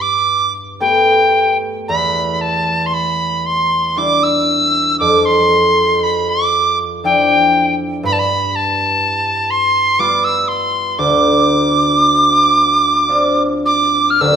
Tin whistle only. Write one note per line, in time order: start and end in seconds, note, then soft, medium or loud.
0.01 0.53 D6 medium
0.80 1.57 G5 medium
1.88 2.33 B5 medium
2.33 2.43 B5 soft
2.41 2.88 A5 medium
2.86 2.95 C6 medium
2.94 3.48 B5 medium
3.46 3.99 C6 medium
3.98 4.25 D6 medium
4.23 4.99 E6 medium
4.99 5.27 D6 medium
5.25 6.05 C6 medium
6.03 6.31 B5 medium
6.29 6.78 D6 medium
7.05 7.75 G5 medium
8.05 8.14 B5 medium
8.13 8.20 A5 medium
8.19 8.57 B5 medium
8.55 9.52 A5 medium
9.50 10.01 C6 medium
10.00 10.26 D6 medium
10.24 10.49 E6 medium
10.48 11.00 C6 medium
10.99 13.43 D6 medium
13.65 14.12 D6 medium
14.10 14.22 F6 medium
14.21 14.36 E6 medium